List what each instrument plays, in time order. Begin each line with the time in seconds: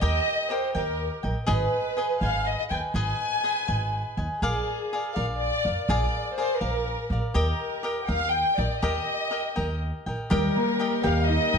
0.01 upright bass D#2, cavaquinho G4 A#4 D#5 G5, violin section D#5
0.50 cavaquinho G4 A#4 D#5 G5, violin section C5
0.73 upright bass D#2, cavaquinho G4 A#4 D#5 G5, violin section A#4
1.23 upright bass A#1, cavaquinho A#4 D#5 G5
1.46 upright bass G#1, cavaquinho G#4 B4 D#5 G#5, violin section B4
1.97 cavaquinho G#4 B4 D#5 G#5
2.21 upright bass G#1, cavaquinho G#4 B4 D#5 G#5, violin section F5
2.46 violin section D#5
2.58 violin section D#5
2.69 upright bass D#2, cavaquinho B4 D#5 G#5, violin section G5
2.94 upright bass G#1, cavaquinho G#4 B4 D#5 G#5, violin section G#5
3.44 cavaquinho G#4 B4 D#5 G#5
3.68 upright bass G#1, cavaquinho G#4 B4 D#5 G#5
4.17 upright bass D#2, cavaquinho B4 D#5 G#5
4.41 upright bass A#1, violin section G#4, cavaquinho G#4 A#4 D5 F5
4.93 cavaquinho G#4 A#4 D5 F5
5.13 upright bass A#1, cavaquinho G#4 A#4 D5 F5, violin section F5
5.36 violin section D5
5.65 upright bass F2, cavaquinho A#4 D5 F5
5.86 upright bass A#1, cavaquinho G#4, violin section D5
5.90 cavaquinho A#4 D5 F5
6.35 cavaquinho G#4 A#4 F5, violin section C5
6.40 cavaquinho D5
6.59 upright bass A#1, cavaquinho G#4 A#4 D5 F5, violin section A#4
7.10 upright bass A#1, cavaquinho A#4 D5 F5
7.33 upright bass D#2, cavaquinho G4 A#4 D#5 G5, violin section A#4
7.83 cavaquinho G4 A#4 D#5 G5
8.03 violin section F5 G5
8.07 upright bass D#2, cavaquinho G4 A#4 D#5 G5
8.32 violin section G5
8.56 upright bass A#1, cavaquinho A#4 D#5 G5, violin section D5
8.80 upright bass D#2, cavaquinho G4 A#4 D#5 G5, violin section D#5
9.31 cavaquinho G4 A#4 D#5 G5
9.56 upright bass D#2, cavaquinho G4 A#4 D#5 G5
10.06 upright bass A#1, cavaquinho A#4 D#5 G5
10.30 upright bass D#2, harp G3, violin section G3 D#4 A#4, cavaquinho G4 A#4 D#5 G5
10.56 harp A#3
10.79 cavaquinho G4 A#4 D#5 G5
11.03 upright bass D#2, harp G4, cavaquinho G4 A#4 D#5 G5, violin section F5
11.27 harp D#4, violin section D#5
11.54 upright bass A#1, cavaquinho D#5 G5